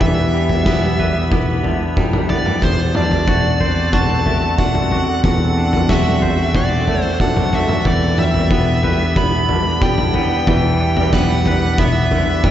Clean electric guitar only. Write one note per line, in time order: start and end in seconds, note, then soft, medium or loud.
0.00 0.67 D3 medium
0.00 1.65 E3 medium
0.00 0.33 G3 medium
0.00 0.65 B3 medium
0.34 1.96 G3 soft
0.66 1.30 B3 medium
0.99 2.63 B4 medium
1.31 2.28 B3 medium
1.63 2.62 D3 medium
1.97 2.63 G3 medium
2.29 2.63 B3 medium
2.62 4.26 E2 medium
2.95 4.59 D4 medium
3.28 3.91 F#4 medium
3.61 5.24 C5 medium
3.93 4.91 F#4 medium
4.26 5.90 A3 medium
4.59 5.57 D4 medium
4.92 5.89 F#4 medium
5.25 6.88 E2 medium
5.58 7.21 D4 soft
5.90 6.54 F#4 medium
6.22 7.86 C5 medium
6.55 7.52 F#4 medium
6.88 7.86 A3 medium
7.21 7.89 D4 soft
7.53 7.86 F#4 soft
7.86 9.50 E3 soft
8.19 9.81 G3 medium
8.52 9.15 B3 medium
8.84 10.48 B4 medium
9.17 10.14 B3 medium
9.50 11.14 D3 medium
9.83 10.80 G3 medium
10.15 11.13 B3 medium
10.48 12.12 E3 medium
10.81 12.43 G3 medium
11.14 11.78 B3 medium
11.47 12.51 B4 medium
11.79 12.51 B3 medium
12.12 12.51 D3 medium
12.44 12.51 G3 medium